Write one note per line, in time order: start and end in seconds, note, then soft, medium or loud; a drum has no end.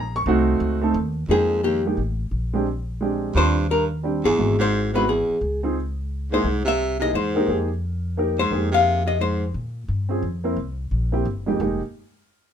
0.00 0.25 A#1 medium
0.00 0.15 A#5 medium
0.16 0.23 C#6 loud
0.26 0.59 C2 medium
0.26 0.78 A3 medium
0.26 0.78 C4 medium
0.26 0.78 D#4 medium
0.26 0.79 F#4 loud
0.60 0.94 C#2 medium
0.82 0.93 A3 medium
0.82 0.94 C4 medium
0.82 0.94 D#4 medium
0.82 0.94 A4 medium
0.94 1.28 D#2 medium
1.29 1.93 F2 medium
1.29 1.61 F2 medium
1.29 1.81 G#3 medium
1.29 1.81 A#3 medium
1.29 1.81 D#4 medium
1.29 1.62 G#4 medium
1.29 1.81 G5 medium
1.63 1.83 D#2 soft
1.63 1.84 G4 medium
1.85 1.97 G#3 medium
1.85 1.97 A#3 medium
1.85 1.98 D#4 medium
1.85 1.98 G4 medium
1.97 2.29 A1 medium
2.31 3.31 A#1 medium
2.53 2.65 G#3 medium
2.53 2.65 C4 medium
2.53 2.66 D4 soft
2.53 2.66 G4 medium
3.01 3.35 G#3 medium
3.01 3.34 C4 soft
3.01 3.35 D4 soft
3.01 3.36 G4 medium
3.35 4.21 D#2 medium
3.35 3.67 G2 medium
3.35 3.54 G3 soft
3.35 3.55 C4 soft
3.35 3.55 D4 soft
3.35 3.55 F4 medium
3.35 3.68 C5 medium
3.69 3.89 G2 medium
3.69 3.83 A#4 medium
4.03 4.23 G3 medium
4.03 4.23 C4 soft
4.03 4.23 D4 soft
4.03 4.24 G4 medium
4.24 4.37 G1 medium
4.24 4.57 E2 medium
4.24 4.57 G#4 medium
4.38 5.24 G#1 medium
4.38 4.89 G#3 soft
4.38 4.90 C4 soft
4.38 4.90 E4 soft
4.38 4.90 F#4 medium
4.58 4.91 G#2 medium
4.58 4.92 C5 medium
4.93 5.06 G#2 medium
4.93 5.06 B3 medium
4.93 5.06 C4 medium
4.93 5.07 E4 medium
4.93 5.07 F#4 medium
4.93 5.07 B4 medium
5.07 5.39 E2 soft
5.07 5.60 G#4 medium
5.28 muted upright bass stroke soft
5.41 6.40 C#2 medium
5.63 5.75 C4 medium
5.63 5.75 D#4 medium
5.63 5.75 F4 medium
5.63 5.76 G#4 medium
6.32 6.64 G#2 medium
6.32 6.44 A#3 medium
6.32 6.44 D#4 medium
6.32 6.44 E4 medium
6.32 6.44 G#4 medium
6.32 6.65 C5 medium
6.44 7.09 C2 medium
6.65 6.97 C3 medium
6.65 6.99 E5 medium
7.00 7.12 C3 medium
7.00 7.12 A#3 medium
7.00 7.13 D#4 medium
7.00 7.13 E4 medium
7.00 7.13 G#4 medium
7.00 7.14 D#5 medium
7.13 7.45 E2 medium
7.13 7.65 G#2 medium
7.13 7.66 C5 medium
7.35 7.46 A#3 medium
7.35 7.47 D#4 medium
7.35 7.47 G4 medium
7.35 7.47 A#4 medium
7.47 8.47 F2 medium
7.47 7.67 A#3 medium
7.47 7.67 D#4 medium
7.47 7.68 G4 medium
7.47 7.68 G#4 medium
8.17 8.36 A#3 medium
8.17 8.36 D#4 medium
8.17 8.37 G4 medium
8.17 8.37 A#4 medium
8.38 8.70 G#2 medium
8.38 8.71 C5 medium
8.51 9.50 F2 medium
8.51 9.46 A#3 medium
8.51 9.47 D#4 medium
8.51 9.47 G4 soft
8.51 9.47 G#4 medium
8.71 9.04 C3 medium
8.71 9.05 F5 medium
9.06 9.18 C3 medium
9.06 9.20 D#5 medium
9.19 9.45 G#2 medium
9.19 9.46 C5 medium
9.54 9.87 A#2 medium
9.88 10.22 G2 medium
10.09 10.21 C4 medium
10.09 10.21 C#4 soft
10.09 10.22 F4 medium
10.09 10.22 G#4 medium
10.22 10.56 F2 medium
10.44 10.55 A#3 medium
10.44 10.56 C4 medium
10.44 10.56 E4 medium
10.44 10.56 A#4 medium
10.57 10.90 C2 medium
10.91 11.24 A#1 medium
11.12 11.24 A#3 medium
11.12 11.24 C4 medium
11.12 11.24 E4 soft
11.12 11.25 G4 medium
11.25 11.59 G1 medium
11.46 11.58 F2 medium
11.46 11.59 G#3 medium
11.46 11.59 A#3 medium
11.46 11.59 D#4 medium
11.46 11.59 G4 medium
11.60 11.80 F1 medium
11.60 11.79 G#3 medium
11.60 11.79 A#3 medium
11.60 11.79 D#4 medium
11.60 11.80 G4 medium